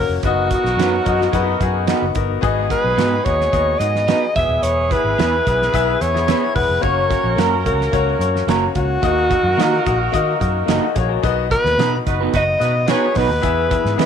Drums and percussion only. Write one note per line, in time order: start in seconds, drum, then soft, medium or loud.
0.23 kick loud
0.23 closed hi-hat medium
0.51 kick medium
0.51 closed hi-hat medium
0.66 snare soft
0.79 snare loud
0.79 closed hi-hat medium
1.06 kick medium
1.06 closed hi-hat medium
1.21 snare soft
1.33 kick medium
1.33 closed hi-hat medium
1.61 kick medium
1.61 closed hi-hat medium
1.88 snare loud
1.88 closed hi-hat medium
2.15 kick medium
2.15 closed hi-hat medium
2.43 kick loud
2.43 closed hi-hat medium
2.70 kick medium
2.70 closed hi-hat medium
2.99 snare loud
2.99 closed hi-hat medium
3.26 kick medium
3.26 closed hi-hat medium
3.41 snare soft
3.53 kick medium
3.53 closed hi-hat medium
3.81 closed hi-hat medium
3.96 snare soft
4.08 snare loud
4.08 closed hi-hat medium
4.36 kick medium
4.36 closed hi-hat medium
4.63 closed hi-hat medium
4.91 kick medium
4.91 closed hi-hat medium
5.19 snare loud
5.19 closed hi-hat medium
5.47 kick medium
5.47 closed hi-hat medium
5.62 snare soft
5.74 kick medium
5.74 closed hi-hat medium
6.01 closed hi-hat medium
6.16 snare soft
6.28 snare loud
6.28 closed hi-hat medium
6.56 kick medium
6.56 open hi-hat medium
6.83 kick loud
6.83 closed hi-hat medium
7.11 kick medium
7.11 closed hi-hat medium
7.38 snare loud
7.38 closed hi-hat medium
7.66 kick medium
7.66 closed hi-hat medium
7.81 snare soft
7.93 kick medium
7.93 closed hi-hat medium
8.21 closed hi-hat medium
8.36 snare soft
8.49 snare loud
8.49 closed hi-hat medium
8.75 kick medium
8.75 closed hi-hat medium
9.03 kick loud
9.03 closed hi-hat medium
9.31 kick medium
9.31 closed hi-hat medium
9.60 snare medium
9.60 closed hi-hat medium
9.86 kick medium
9.86 closed hi-hat medium
10.14 kick medium
10.14 closed hi-hat medium
10.41 kick medium
10.41 closed hi-hat medium
10.68 snare loud
10.68 closed hi-hat medium
10.96 kick medium
10.96 closed hi-hat medium
11.24 kick loud
11.24 closed hi-hat medium
11.51 kick medium
11.51 closed hi-hat medium
11.66 snare soft
11.79 snare loud
11.79 closed hi-hat medium
12.07 kick medium
12.07 closed hi-hat medium
12.34 kick medium
12.34 closed hi-hat medium
12.61 closed hi-hat medium
12.88 snare loud
12.88 closed hi-hat medium
13.15 kick medium
13.15 open hi-hat medium
13.43 kick loud
13.43 closed hi-hat medium
13.71 kick medium
13.71 closed hi-hat medium
13.85 snare soft
13.99 snare loud
13.99 closed hi-hat medium